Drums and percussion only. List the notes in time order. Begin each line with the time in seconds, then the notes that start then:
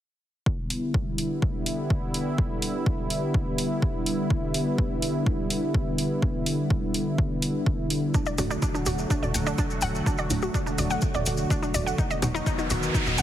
0.46 kick
0.70 open hi-hat
0.94 kick
1.18 open hi-hat
1.42 kick
1.66 open hi-hat
1.90 kick
2.14 open hi-hat
2.38 kick
2.62 open hi-hat
2.86 kick
3.10 open hi-hat
3.34 kick
3.58 open hi-hat
3.82 kick
4.06 open hi-hat
4.30 kick
4.54 open hi-hat
4.78 kick
5.02 open hi-hat
5.26 kick
5.50 open hi-hat
5.74 kick
5.98 open hi-hat
6.22 kick
6.46 open hi-hat
6.70 kick
6.94 open hi-hat
7.18 kick
7.42 open hi-hat
7.66 kick
7.90 open hi-hat
8.14 kick, maracas
8.26 maracas
8.38 open hi-hat, maracas
8.51 maracas
8.62 kick, maracas
8.75 maracas
8.86 open hi-hat, maracas
8.98 maracas
9.10 kick, maracas
9.23 maracas
9.34 open hi-hat, maracas
9.46 maracas
9.58 kick, maracas
9.70 maracas
9.81 open hi-hat, maracas
9.95 maracas
10.06 kick, maracas
10.18 maracas
10.30 open hi-hat, maracas
10.42 maracas
10.54 kick, maracas
10.67 maracas
10.78 open hi-hat, maracas
10.90 maracas
11.02 kick, maracas
11.14 maracas
11.26 open hi-hat, maracas
11.37 maracas
11.50 kick, maracas
11.63 maracas
11.74 open hi-hat, maracas
11.87 maracas
11.98 kick, maracas
12.11 maracas
12.22 open hi-hat, maracas
12.35 maracas
12.46 kick, maracas
12.59 maracas
12.70 open hi-hat, maracas
12.83 maracas
12.94 kick, maracas
13.06 maracas
13.18 open hi-hat, maracas